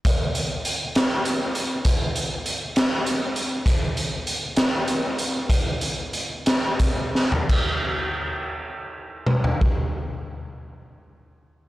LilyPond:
\new DrumStaff \with { instrumentName = "Drums" } \drummode { \time 6/8 \tempo 4. = 63 <hh bd>8 hh8 hh8 <hh sn>8 hh8 hh8 | <hh bd>8 hh8 hh8 <hh sn>8 hh8 hh8 | <hh bd>8 hh8 hh8 <hh sn>8 hh8 hh8 | <hh bd>8 hh8 hh8 <hh sn>8 <hh bd>8 sn16 tomfh16 |
<cymc bd>4. r4 toml16 tomfh16 | bd4. r4. | }